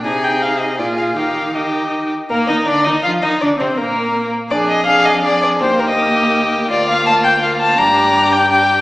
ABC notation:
X:1
M:3/4
L:1/16
Q:1/4=164
K:Eb
V:1 name="Violin"
a2 g2 f2 e2 d2 f2 | f4 e4 z4 | B2 e2 d2 e2 f2 e2 | d2 c2 B6 z2 |
d2 e2 f2 e2 d2 d2 | c2 B e6- e z2 | [K:Bb] d2 f2 a2 g2 f2 a2 | b6 g2 g4 |]
V:2 name="Violin"
A8 A4 | G4 G6 z2 | B,2 E2 D2 E2 F2 E2 | D2 C2 B,6 z2 |
A4 A4 A4 | G12 | [K:Bb] F8 F4 | G8 G4 |]
V:3 name="Viola"
E8 F4 | E4 E6 z2 | B,2 E2 D2 E2 F2 E2 | D2 C2 B,6 z2 |
D4 D4 D4 | B,12 | [K:Bb] B,8 B,4 | D8 D4 |]
V:4 name="Cello" clef=bass
C,8 B,,4 | E,8- E,2 z2 | B,,2 E,2 D,2 E,2 F,2 E,2 | D,2 C,2 B,,6 z2 |
F,,12 | E,,12 | [K:Bb] D,,12 | G,,12 |]